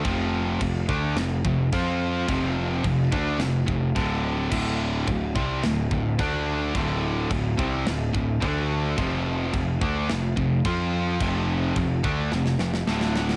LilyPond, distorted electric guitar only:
\new Staff \with { instrumentName = "Distorted electric guitar" } { \clef bass \time 4/4 \key f \major \tempo 4 = 108 <f, c f>4 <f, c>8 <d a d'>8 <f, c>8 <f, c>8 <f c' f'>4 | <f, c f>4 <f, c>8 <d a d'>8 <f, c>8 <f, c>8 <d, a, d>4 | <d, a, d>4 <d, a,>8 <c g c'>8 <d, a,>8 <d, a,>8 <d a d'>4 | <d, a, d>4 <d, a,>8 <c g c'>8 <d, a,>8 <d, a,>8 <d a d'>4 |
<f, c f>4 <f, c>8 <d a d'>8 <f, c>8 <f, c>8 <f c' f'>4 | <f, c f>4 <f, c>8 <d a d'>8 <f, c>8 <f, c>8 <d, a, d>4 | }